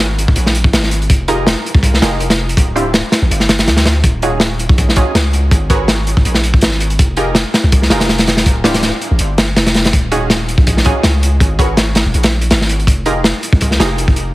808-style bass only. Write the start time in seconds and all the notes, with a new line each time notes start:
Already playing: G#1
0.28 D#1
0.36 A#1
0.73 G#1
1.10 F1
1.75 C2
2.02 F1
2.57 D1
3.22 A1
3.31 G1
3.68 D2
4.04 D#1
4.69 A#1
5.15 C#2
5.51 G#1
6.17 D#1
6.25 A#1
6.62 G#1
6.99 F1
7.64 C2
7.91 F1
8.46 D1
9.11 A1
9.20 G1
9.56 F1
9.93 D#1
10.58 A#1
11.04 C#2
11.41 G#1
12.06 D#1
12.14 A#1
12.51 G#1
12.87 F1
13.53 C2
13.80 F1